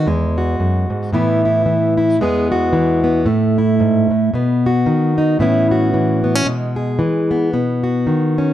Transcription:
0.07 E2 G#3
0.38 F#4
0.60 F#2
0.90 G#2
1.13 A2 E3 B3 E4
1.45 E4
1.66 E3
1.97 E4
2.20 E2 E3 G#3 B3 G#4
2.52 F#4
2.73 E3
3.04 B3
3.26 A2 A3
3.58 E4
3.80 G#2
4.11 A2
4.34 B2 B3
4.66 F#4
4.86 D#3
5.18 D#4
5.39 A2 E3 B3 C#4 E4
5.71 F#4
5.94 E3
6.24 B3
6.35 C#4
6.46 B2 G#3
6.76 G#4
6.99 E3
7.31 B3
7.53 B2 B3
7.84 F#4
8.07 D#3
8.38 C#4

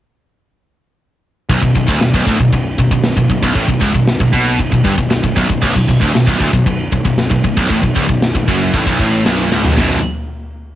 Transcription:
1.49 B0 B1, kick, china
1.62 B0 B1, kick
1.75 B0 B1, kick
1.88 D1 D2, kick
2.01 B0 B1, snare, china
2.14 B0 B1, kick
2.26 D1 D2, kick
2.40 B0 B1, kick
2.53 B0 B1, kick, china
2.78 B0 B1, kick
2.91 B0 B1, kick
3.03 snare, china
3.17 B0 B1, kick
3.30 B0 B1, kick
3.42 B0 B1, kick
3.55 A1 A2, kick, china
3.68 B0 B1, kick
3.81 C#1 C#2, kick
3.94 B0 B1, kick
4.07 snare, china
4.20 B0 B1, kick
4.33 B1 B2, kick
4.59 B0 B1, kick, china
4.72 B0 B1, kick
4.85 G1 G2, kick
4.98 B0 B1, kick
5.10 B0 B1, snare, china
5.24 B0 B1, kick
5.36 B0 B1, kick
5.49 B0 B1, kick
5.62 B0 B1, kick, china, crash
5.75 B0 B1, kick
5.88 B0 B1, kick
6.01 D1 D2, kick
6.14 B0 B1, snare, china
6.27 B0 B1, kick
6.40 D1 D2, kick
6.53 B0 B1, kick
6.66 B0 B1, kick, china
6.92 B0 B1, kick
7.05 B0 B1, kick
7.18 snare, china
7.30 B0 B1, kick
7.44 B0 B1, kick
7.57 B0 B1, kick
7.69 A1 A2, kick, china
7.82 B0 B1, kick
7.95 C#1 C#2, kick
8.08 B0 B1, kick
8.22 snare, china
8.35 B0 B1, kick
8.48 F#1 F#2, kick
8.73 A1 A2, kick, china
8.86 B0 B1, kick
8.99 A1 A2, kick
9.26 B0 B1, snare, china
9.51 C#1 C#2, snare
9.64 floor tom
9.76 B0 B1 F#2 B2 F#3 D4, kick, snare, crash

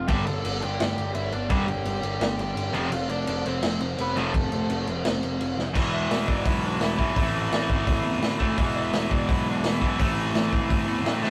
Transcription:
Already playing: F5
0.08 G1 G2 D3 G3 B3 D4 G4 G5, kick, crash
0.25 G1 A4 A5, crash
0.45 G1, crash
0.60 G1 D3 G3 G4 G5, crash
0.64 G2
0.80 G1, snare, crash
0.98 G1, crash
1.14 G1 E4 E5, crash
1.32 G1 D4 D5, crash
1.49 G1 G2 D3 G3 B3 D4 G4 G5, kick, crash
1.67 G1 G4 G5, crash
1.85 G1, crash
2.02 G1 G2 D3 G3, crash
2.20 G1, snare, crash
2.38 G1 G4 G5, crash
2.55 G1, crash
2.72 F1 F2 C3 F3 A3 C4, crash
2.90 F1 F4, crash
2.94 F5
3.09 F1 D4 D5, crash
3.27 F1 F2 C3, crash
3.31 F3
3.46 F1 C4 C5, crash
3.63 F1, snare, crash
3.80 F1, crash
3.97 F1 B3 B4, crash
4.15 F1 F2 C3 F3 A3 C4 A4, crash
4.34 F1, kick, crash
4.51 F1, crash
4.68 F1 F2 C3 F3, crash
4.87 F1, crash
5.05 F1, snare, crash
5.23 F1, crash
5.40 F1, crash
5.57 F1, snare
5.75 E1 E2 B2 E3 G#3 B3 E4, kick, crash
5.94 E5
6.10 E1, snare, open hi-hat
6.28 D5, kick
6.45 B1 E4, kick, open hi-hat
6.64 D4
6.81 E1 E4, snare, open hi-hat
6.98 B1 E2 B2 E3 G#3 B3 E4, kick
7.15 A1 A2 E3 A3 C4 E4, kick, open hi-hat
7.51 A1, snare, open hi-hat
7.69 G#1, kick
7.87 A1, kick, open hi-hat
8.05 E2
8.22 D2, snare, open hi-hat
8.40 A2 E3 A3 C4 E4, kick
8.58 E1 E2 B2 E3 G#3 B3, kick, open hi-hat
8.62 E4
8.76 E5
8.93 E1, snare, open hi-hat
9.11 D5, kick
9.29 B1 E4, kick, open hi-hat
9.49 D4
9.63 E1 E4, snare, open hi-hat
9.80 B1 E2 B2 E3 G#3 B3 E4, kick
9.86 E3
9.99 A1 A2 E3 A3 C4 E4, kick, open hi-hat
10.34 A1, snare, open hi-hat
10.52 G#1, kick
10.70 A1, kick, open hi-hat
10.87 E2
11.04 D2 E5 G5, snare, open hi-hat
11.21 A2 E3 A3 C4 E4 E5 G5, snare

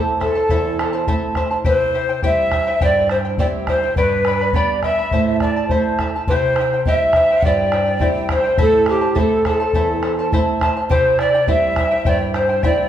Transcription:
Already playing: A3 C4 E4 A4 C5 E5 A5
0.20 E4 A4 C5 E5 A5, bombo rim, bombo low
0.35 E4 C5 A5
0.49 E2 E4 A4 C5 E5 A5, bombo low
0.79 E4 C5 E5 A5, bombo rim
0.93 E4 C5 A5
1.07 A3 C4 E4 A4 C5 E5 A5, bombo low
1.35 E4 C5 E5 A5, bombo rim, bombo low
1.51 E4 C5 A5
1.64 C3 E4 G4 C5 E5 G5, bombo low
1.94 E4 C5 E5 G5
2.09 E4 C5 G5
2.22 G3 C4 E4 G4 C5 E5 G5, bombo low
2.51 E4 C5 E5 G5, bombo rim, bombo low
2.67 E4 C5 G5
2.81 G2 E4 G4 C5 D5 E5 G5, bombo low
3.09 E4 C5 E5 G5, bombo rim
3.25 E4 C5 G5
3.38 G3 C4 E4 G4 C5 D5 E5 G5, bombo low
3.67 E4 C5 E5 G5, bombo rim, bombo low
3.83 E4 C5 G5
3.96 G2 G4 B4 D5 G5 B5, bombo low
4.25 B4 D5 G5 B5, bombo rim
4.41 B4 D5 B5
4.53 G3 B3 D4 G4 B4 D5 G5 B5, bombo low
4.83 B4 D5 E5 G5 B5, bombo rim, bombo low
4.99 B4 D5 B5
5.11 A2 E4 A4 C5 E5 A5, bombo low
5.40 E4 A4 D5 E5 A5, bombo rim, bombo low
5.56 E4 A4 A5
5.68 A3 C4 E4 A4 C5 E5 A5, bombo low
5.99 E4 A4 E5 A5, bombo rim, bombo low
6.16 E4 A4 A5
6.27 C3 E4 G4 C5 E5, bombo low
6.31 G5
6.56 E4 C5 E5, bombo rim
6.61 G5
6.73 E4 C5 G5
6.85 G3 C4 E4 G4 C5 E5 G5, bombo low
7.13 E4 C5 E5 G5, bombo rim, bombo low
7.31 E4 C5 G5
7.42 G2 E4 G4 D5 E5 G5, bombo low
7.46 C5 G5
7.72 E4 C5 E5 G5, bombo rim
7.86 E4 C5 G5
7.99 G3 C4 E4 G4 C5 E5 G5, bombo low
8.29 E4 C5 E5 G5, bombo rim, bombo low
8.34 C5
8.43 E4 C5 G5
8.58 A2 E4 A4 C5 E5 A5, bombo low
8.62 A4
8.86 E4 G4 C5 E5 A5, bombo rim
8.90 G4
9.01 E4 C5 A5
9.15 A3 C4 E4 A4 C5 E5 A5, bombo low
9.19 A4
9.45 E4 A4 C5 E5 A5, bombo rim, bombo low
9.60 E4 C5 A5
9.73 E2 E4 A4 C5 E5 A5, bombo low
10.03 E4 C5 E5 A5, bombo rim
10.19 E4 C5 A5
10.32 A3 C4 E4 A4 C5 E5 A5, bombo low
10.61 E4 C5 E5 A5, bombo rim, bombo low
10.77 E4 C5 A5
10.90 C3 E4 G4 C5 E5 G5, bombo low
11.19 E4 C5 D5 E5 G5, bombo rim
11.35 E4 C5 G5
11.47 G3 C4 E4 G4 C5 E5 G5, bombo low
11.76 E4 C5 E5 G5, bombo rim, bombo low
11.91 E4 C5 G5
12.05 G2 E4 G4 C5 D5 E5 G5, bombo low
12.34 E4 C5 E5 G5, bombo rim
12.49 E4 C5 G5
12.63 G3 C4 E4 G4 C5 D5 E5 G5, bombo low

